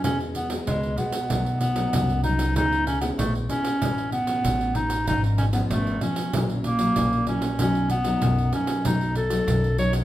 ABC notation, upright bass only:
X:1
M:4/4
L:1/8
Q:1/4=95
K:Bmix
V:1 name="Upright bass" clef=bass
E,,2 C,, z B,,,2 =C,,2 | C,,2 ^A,,, z =A,,,2 A,,,2 | G,,,2 G,,, z ^A,,,2 A,,,2 | B,,,2 B,,, z B,,,2 B,,,2 |]